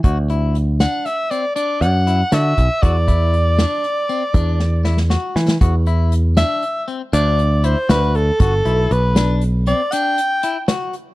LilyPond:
<<
  \new Staff \with { instrumentName = "Soprano saxophone" } { \time 11/8 \key d \mixolydian \tempo 4 = 118 r4. fis''8 e''8 d''8 d''8 fis''4 e''4 | d''1~ d''8 r4 | r4. e''4 r8 d''4 c''8 b'8 a'8~ | a'4 b'4 r8 d''8 g''4. r4 | }
  \new Staff \with { instrumentName = "Clean electric guitar" } { \time 11/8 \key d \mixolydian fis'8 e'4 d'4 c'8 d'4 e'8 fis'4 | fis'8 e'4 d'4 c'8 d'4 e'8 fis'4 | fis'8 e'4 d'4 c'8 d'4 e'8 fis'4 | fis'8 e'4 d'4 c'8 d'4 e'8 fis'4 | }
  \new Staff \with { instrumentName = "Picked electric bass" } { \clef bass \time 11/8 \key d \mixolydian d,2 r4. fis,4 d8 b,,16 r16 | e,2 r4 e,2 e8 | e,2 r4 d,4. d,4 | g,,8 b,,8 b,,2 r2 r8 | }
  \new DrumStaff \with { instrumentName = "Drums" } \drummode { \time 11/8 <hh bd>8 hh8 hh8 <hh sn>8 <hh sn>8 hh8 hh8 hh8 hh8 <hh sn>8 <hh bd>8 | <hh bd>8 <hh bd>8 hh8 <hh sn>8 hh8 hh8 <hh bd>8 sn8 sn16 sn16 sn8 sn16 sn16 | <hh bd>8 hh8 hh8 <hh sn>8 hh8 hh8 hh8 hh8 hh8 <hh sn>8 hh8 | <hh bd>8 hh8 hh8 <hh sn>8 hh8 hh8 hh8 hh8 hh8 <hh sn>8 hh8 | }
>>